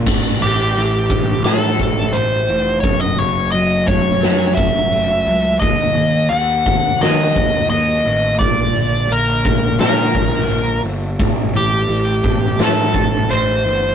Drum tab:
CC |x---------------|----------------|----------------|----------------|
HH |--o-o-o-o-o-o-o-|o-o-o-o-o-o-o-o-|o-o-o-o-o-o-o-o-|o-o-o-o-o-o-o-o-|
SD |--------o-------|--------o-------|--------o-------|--------o--o----|
BD |o-----o---o-----|o-----o---o-----|o-----o---o-----|o-----o---o-----|

CC |----------------|
HH |o-o-o-o-o-o-o-o-|
SD |--------o-------|
BD |o-----o---o-----|